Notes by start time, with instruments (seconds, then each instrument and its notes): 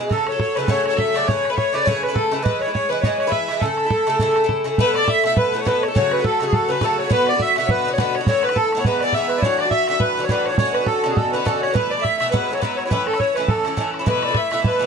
0.00 bouzouki G#3 E4 G#4
0.09 bouzouki C#3 F#3 A3 A4, accordion A4, fiddle A4, bodhran
0.27 accordion C#5, fiddle C#5, bodhran
0.32 bouzouki F#3 A3 A4
0.39 fiddle C#5, accordion C#5, bodhran
0.55 bouzouki C#3 F#3, fiddle B4, accordion B4, bodhran
0.59 bouzouki A3 A4
0.68 bouzouki C#3 F#3 A3 A4, fiddle C#5, accordion C#5, bodhran
0.85 fiddle C#5, accordion C#5, bodhran
0.90 bouzouki C#3 F#3 A3 A4
0.97 fiddle E5, accordion E5, bodhran
1.14 bouzouki C#3 F#3 A3 A4, accordion D5, bodhran
1.27 bouzouki C#3 A3 E4, accordion C#5, fiddle C#5, bodhran
1.31 bouzouki B4
1.45 bodhran
1.50 bouzouki A3 E4 B4, fiddle B4, accordion B4
1.57 accordion C#5, fiddle C#5, bodhran
1.73 bouzouki C#3 A3 E4 B4, accordion D5, bodhran
1.84 bouzouki C#3 A3 E4 B4, accordion C#5, fiddle C#5, bodhran
2.03 accordion B4, bodhran
2.08 bouzouki C#3 A3 E4 B4
2.15 accordion A4, fiddle A4, bodhran
2.31 bouzouki C#3 A3 E4 B4, bodhran
2.42 bouzouki E3 G#3 E4 B4, accordion B4, fiddle B4, bodhran
2.60 accordion C#5, fiddle C#5, bodhran
2.66 bouzouki G#3 E4 B4
2.73 accordion C#5, fiddle C#5, bodhran
2.89 bouzouki E3 G#3 E4 B4, fiddle B4, accordion B4
3.02 bouzouki E3 G#3 E4, accordion C#5, fiddle C#5, bodhran
3.06 bouzouki B4
3.19 accordion C#5, fiddle C#5, bodhran
3.27 bouzouki E3 G#3 E4 B4, accordion E5
3.31 fiddle E5, bodhran
3.48 bouzouki E3 G#3 E4, bodhran
3.53 bouzouki B4
3.60 bouzouki C#3 A3 E4, accordion A4, fiddle A4, bodhran
3.65 bouzouki A4
3.77 bodhran
3.85 bouzouki A3 E4 A4
3.90 bodhran
4.07 bouzouki C#3 A3 E4 A4, bodhran
4.19 bouzouki C#3 A3 E4 A4, bodhran
4.36 bodhran
4.44 bouzouki C#3 A3 E4 A4
4.49 bodhran
4.64 bouzouki C#3 A3 E4 A4, bodhran
4.78 bouzouki B2 A3 E4 A4, fiddle B4, bodhran
4.82 accordion B4
4.95 fiddle D5, accordion D5, bodhran
5.03 bouzouki A3 E4 A4
5.08 fiddle E5, accordion E5, bodhran
5.24 bouzouki B2 A3 E4 A4, accordion E5, fiddle E5, bodhran
5.37 accordion B4, fiddle B4, bodhran
5.53 bouzouki B2 A3 E4 A4
5.60 fiddle C#5, accordion C#5
5.65 bouzouki B2 A3 E4 A4, accordion B4, fiddle B4, bodhran
5.82 accordion C#5, fiddle C#5, bodhran
5.88 bouzouki A3 A4
5.95 bouzouki C#3 F#3 A3 F#4, fiddle C#5, accordion C#5, bodhran
6.11 accordion B4, bodhran
6.19 bouzouki F#3 A3 F#4
6.24 accordion A4, fiddle A4, bodhran
6.40 bouzouki C#3 F#3 A3 F#4, bodhran
6.47 accordion G#4, fiddle G#4
6.53 accordion A4, fiddle A4, bodhran
6.69 bouzouki C#3 F#3 A3 F#4, accordion B4, fiddle B4
6.81 bouzouki C#3 F#3 A3 F#4, accordion A4, bodhran
6.85 fiddle A4
6.98 accordion C#5, fiddle C#5
7.04 bouzouki F#3 A3 F#4
7.09 bouzouki B2 D3 B3 F#4, fiddle B4, accordion B4, bodhran
7.27 accordion D5, fiddle D5, bodhran
7.34 bouzouki D3 B3 F#4
7.40 fiddle E5, accordion E5, bodhran
7.56 bouzouki B2 D3 B3 F#4, accordion E5, fiddle E5, bodhran
7.66 fiddle C#5, bodhran
7.70 fiddle B4, accordion B4
7.86 bouzouki B2 D3 B3 F#4
7.93 accordion C#5, fiddle C#5
7.98 bouzouki B2 D3 B3 F#4, fiddle B4, accordion B4, bodhran
8.15 fiddle C#5, accordion C#5, bodhran
8.21 bouzouki D3 B3 F#4
8.27 bouzouki A2 E3 B3 E4, accordion C#5, fiddle C#5, bodhran
8.43 fiddle B4, accordion B4, bodhran
8.49 bouzouki E4, bodhran
8.53 bouzouki E3 B3, accordion A4, bodhran
8.57 fiddle A4
8.72 bouzouki A2, bodhran
8.77 bouzouki E3 B3 E4, accordion C#5, fiddle C#5
8.85 bouzouki G#2 E3 B3 E4, accordion B4, fiddle B4, bodhran
9.00 bouzouki G#2 E3, accordion D5, fiddle D5, bodhran
9.05 bouzouki B3 E4
9.13 bouzouki G#2 E3, accordion E5, fiddle E5, bodhran
9.18 bouzouki B3 E4
9.28 accordion B4, bodhran
9.37 bouzouki E3 B3 E4, accordion D5
9.42 bouzouki A2 E3 D4 F#4, accordion C#5, fiddle C#5, bodhran
9.59 fiddle D5, accordion D5, bodhran
9.65 bouzouki E3 D4 F#4
9.70 accordion E5, fiddle E5, bodhran
9.87 bouzouki A2 E3 D4 F#4, accordion E5, fiddle E5, bodhran
10.00 fiddle B4, accordion B4, bodhran
10.17 bouzouki A2 E3 D4 F#4
10.23 fiddle C#5, accordion C#5
10.29 bouzouki A2 E3 D4 F#4, accordion B4, fiddle B4, bodhran
10.46 fiddle C#5, accordion C#5, bodhran
10.52 bouzouki E3 D4 F#4
10.58 bouzouki B2 D3 C#4 F#4, accordion C#5, fiddle C#5, bodhran
10.74 fiddle B4, accordion B4, bodhran
10.81 bouzouki D3 C#4 F#4
10.86 accordion A4, fiddle A4, bodhran
11.04 bouzouki B2 D3 C#4 F#4, bodhran
11.10 accordion G#4, fiddle G#4
11.17 accordion A4, fiddle A4, bodhran
11.32 bouzouki B2 D3 C#4 F#4, fiddle B4, accordion B4
11.45 bouzouki B2 D3 C#4 F#4, accordion A4, fiddle A4, bodhran
11.61 fiddle C#5, accordion C#5, bodhran
11.68 bouzouki D3 C#4 F#4
11.74 bouzouki B2 E3 A3 E4, accordion B4, fiddle B4, bodhran
11.90 accordion D5, fiddle D5
11.97 bouzouki E3 A3 E4
12.02 accordion E5, fiddle E5, bodhran
12.18 bouzouki B2 E3 A3, accordion E5, fiddle E5, bodhran
12.23 bouzouki E4
12.31 bouzouki G#2 F#3 B3 E4, accordion B4, fiddle B4, bodhran
12.51 bouzouki G#2 F#3 B3 E4, fiddle C#5, accordion C#5
12.60 bouzouki G#2 F#3, accordion B4, fiddle B4, bodhran
12.64 bouzouki B3 E4
12.76 accordion C#5, fiddle C#5, bodhran
12.85 bouzouki F#3 B3 E4, accordion B4 C#5
12.90 bouzouki A2 E3 C#4 E4, fiddle B4, bodhran
13.07 accordion A4, fiddle A4, bodhran
13.13 bouzouki C#4 E4, bodhran
13.18 bouzouki E3, accordion C#5, fiddle C#5, bodhran
13.35 bouzouki A2 E3, accordion B4, fiddle B4, bodhran
13.39 bouzouki C#4 E4
13.48 accordion A4, fiddle A4, bodhran
13.65 bouzouki A2 E3 C#4 E4, bodhran
13.77 bouzouki A2 E3 C#4 E4, bodhran
13.94 bodhran
13.99 bouzouki E3 C#4 E4
14.06 bouzouki B2 E3 A3 E4, accordion B4, fiddle B4, bodhran
14.22 accordion D5, bodhran
14.28 bouzouki E3 A3 E4
14.35 fiddle E5, accordion E5, bodhran
14.51 bouzouki B2 E3 A3 E4, fiddle E5, accordion E5, bodhran
14.64 fiddle B4, accordion B4, bodhran
14.79 bouzouki B2 E3 A3 E4